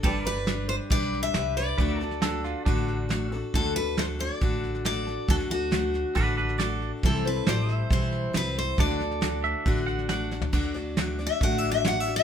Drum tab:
CC |----------------|----------------|----------------|----------------|
HH |----p-------p---|----p-------p---|----p-------p---|----p-------p---|
SD |ooooo-o-ooooo-o-|ooooo-o-ooo-o-o-|ooo-o-o-ooooo-o-|ooo-o-o-ooooo-o-|
FT |----------------|----------------|----------------|----------------|
BD |o-------o-------|o-------o-------|o-------o-------|o-------o-------|

CC |----------------|----------------|x---------------|
HH |----p-------p---|----p-------p---|----p-------p---|
SD |ooooo-o-ooo-o-o-|ooooo-o-ooooo-o-|ooo-o-o-ooo-o-o-|
FT |----------------|---------------o|----------------|
BD |o-------o-------|o-------o-------|o-------o-------|